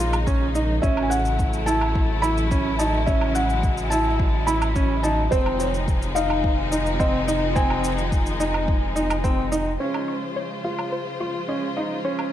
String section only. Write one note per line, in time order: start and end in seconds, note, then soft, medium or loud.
0.00 5.28 C#3 medium
0.00 0.79 F3 medium
0.00 0.79 G#3 medium
0.00 0.79 A#3 medium
0.00 0.81 D#4 medium
0.83 5.28 E3 medium
0.83 5.28 F#3 medium
0.83 3.05 A3 medium
0.83 5.28 E4 medium
3.08 5.30 G#3 medium
5.32 9.76 C3 medium
5.32 9.76 D#3 medium
5.32 9.76 F3 medium
5.32 9.76 G#3 medium
5.32 9.76 D#4 medium
9.80 12.32 C#3 medium
9.80 12.32 F3 medium
9.80 12.32 G#3 medium
9.80 12.32 F4 medium
9.80 12.32 C5 medium